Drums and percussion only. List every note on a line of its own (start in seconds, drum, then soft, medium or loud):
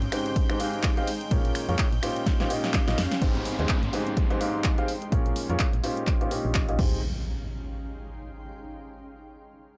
0.02 closed hi-hat soft
0.12 finger snap medium
0.12 open hi-hat loud
0.12 ride medium
0.26 closed hi-hat soft
0.36 kick loud
0.36 closed hi-hat loud
0.36 ride medium
0.50 finger snap medium
0.50 closed hi-hat soft
0.60 open hi-hat loud
0.60 ride medium
0.73 closed hi-hat soft
0.83 kick loud
0.83 clap loud
0.83 closed hi-hat loud
0.83 ride medium
0.97 closed hi-hat soft
1.07 open hi-hat loud
1.07 ride medium
1.21 closed hi-hat soft
1.31 kick loud
1.31 closed hi-hat loud
1.31 ride medium
1.45 closed hi-hat soft
1.55 finger snap medium
1.55 open hi-hat loud
1.55 ride medium
1.69 closed hi-hat soft
1.79 kick loud
1.79 clap loud
1.79 closed hi-hat loud
1.79 ride medium
1.93 closed hi-hat soft
2.03 finger snap medium
2.03 open hi-hat loud
2.03 ride medium
2.16 closed hi-hat soft
2.26 kick loud
2.26 snare medium
2.26 closed hi-hat loud
2.26 ride medium
2.40 snare medium
2.40 closed hi-hat soft
2.50 open hi-hat loud
2.50 ride medium
2.64 snare medium
2.64 closed hi-hat soft
2.74 kick loud
2.74 snare medium
2.74 clap loud
2.74 closed hi-hat medium
2.74 ride medium
2.88 snare medium
2.88 closed hi-hat soft
2.98 snare loud
2.98 open hi-hat loud
2.98 ride medium
3.12 snare medium
3.12 closed hi-hat soft
3.22 kick loud
3.22 closed hi-hat loud
3.35 closed hi-hat soft
3.45 open hi-hat loud
3.59 closed hi-hat soft
3.69 kick loud
3.69 clap loud
3.69 closed hi-hat medium
3.83 closed hi-hat soft
3.93 open hi-hat loud
4.07 closed hi-hat soft
4.17 kick loud
4.17 closed hi-hat loud
4.30 closed hi-hat soft
4.41 open hi-hat loud
4.64 kick loud
4.64 clap loud
4.64 closed hi-hat medium
4.78 closed hi-hat soft
4.88 open hi-hat loud
5.02 closed hi-hat soft
5.12 kick loud
5.12 closed hi-hat loud
5.26 closed hi-hat soft
5.36 open hi-hat loud
5.50 closed hi-hat soft
5.59 kick loud
5.59 clap loud
5.59 closed hi-hat medium
5.73 closed hi-hat soft
5.84 open hi-hat loud
5.97 closed hi-hat soft
6.07 kick loud
6.07 clap medium
6.07 closed hi-hat medium
6.21 closed hi-hat soft
6.31 open hi-hat loud
6.55 kick loud
6.55 clap loud
6.55 closed hi-hat medium
6.69 closed hi-hat soft
6.79 kick loud
6.79 crash medium